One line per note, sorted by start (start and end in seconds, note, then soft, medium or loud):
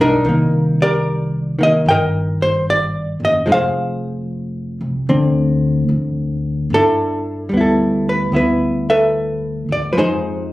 0.00 0.23 B1 medium
0.00 0.24 G3 soft
0.00 0.28 D4 medium
0.00 0.83 D#4 medium
0.00 0.29 G#4 soft
0.00 0.76 A#4 medium
0.00 0.23 D5 medium
0.00 0.23 F5 medium
0.25 1.81 C2 medium
0.25 1.57 D#3 soft
0.29 0.82 A#3 soft
0.82 1.60 G4 medium
0.82 1.89 A#4 medium
0.82 1.63 D5 medium
1.59 3.45 D#3 soft
1.59 1.90 A#3 soft
1.63 1.88 D#5 medium
1.86 3.16 G1 medium
1.86 2.37 G5 medium
1.90 3.45 A#4 medium
1.90 3.23 D#5 medium
2.42 2.65 C5 medium
2.70 3.18 D5 medium
3.20 3.44 F#1 medium
3.25 3.49 D#5 medium
3.46 4.77 F1 medium
3.46 5.07 F3 soft
3.46 3.53 G#3 soft
3.46 3.53 D#4 soft
3.52 5.07 G#4 medium
3.52 5.07 C5 medium
3.52 4.80 F5 medium
4.81 5.06 C2 medium
5.09 5.86 D2 medium
5.09 6.71 D3 soft
5.09 6.71 C4 soft
5.89 6.66 D2 medium
6.70 7.47 G1 medium
6.74 7.53 D4 medium
6.74 7.56 E4 medium
6.74 7.49 A4 medium
7.49 8.29 D2 medium
7.49 9.92 G3 soft
7.54 8.32 B3 soft
7.54 8.33 E4 soft
7.61 8.09 A4 soft
8.09 8.35 B4 medium
8.32 9.64 D2 medium
8.32 8.90 B3 soft
8.32 9.96 E4 soft
8.36 8.89 B4 medium
8.90 9.92 A4 medium
8.90 9.91 B4 medium
8.90 9.65 E5 medium
9.69 9.93 D2 medium
9.69 9.92 D5 medium
9.93 10.53 F2 medium
9.93 10.53 F3 soft
9.93 9.96 B4 soft
9.97 10.53 G#3 soft
9.97 10.53 D#4 soft
9.97 10.53 G#4 medium
9.97 10.53 C5 medium